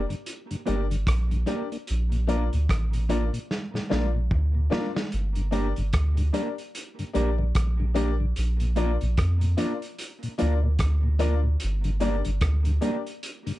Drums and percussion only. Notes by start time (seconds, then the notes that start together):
0.10 closed hi-hat
0.26 closed hi-hat
0.51 closed hi-hat
0.67 closed hi-hat
0.91 closed hi-hat
1.07 kick, cross-stick, closed hi-hat
1.31 closed hi-hat
1.47 closed hi-hat
1.72 closed hi-hat
1.87 closed hi-hat
2.12 closed hi-hat
2.29 closed hi-hat
2.53 closed hi-hat
2.69 kick, cross-stick, closed hi-hat
2.93 closed hi-hat
3.09 closed hi-hat
3.34 closed hi-hat
3.51 snare
3.75 snare
3.91 snare
4.31 kick
4.72 snare
4.96 snare
5.12 closed hi-hat
5.35 closed hi-hat
5.52 closed hi-hat
5.76 closed hi-hat
5.93 kick, cross-stick, closed hi-hat
6.17 closed hi-hat
6.34 closed hi-hat
6.58 closed hi-hat
6.75 closed hi-hat
6.99 closed hi-hat
7.15 closed hi-hat
7.55 kick, cross-stick, closed hi-hat
7.96 closed hi-hat
8.36 closed hi-hat
8.60 closed hi-hat
8.76 closed hi-hat
9.01 closed hi-hat
9.17 kick, cross-stick, closed hi-hat
9.41 closed hi-hat
9.58 closed hi-hat
9.82 closed hi-hat
9.99 closed hi-hat
10.23 closed hi-hat
10.39 closed hi-hat
10.79 kick, cross-stick, closed hi-hat
11.19 closed hi-hat
11.60 closed hi-hat
11.84 closed hi-hat
12.00 closed hi-hat
12.25 closed hi-hat
12.41 kick, cross-stick, closed hi-hat
12.65 closed hi-hat
12.82 closed hi-hat
13.06 closed hi-hat
13.23 closed hi-hat
13.47 closed hi-hat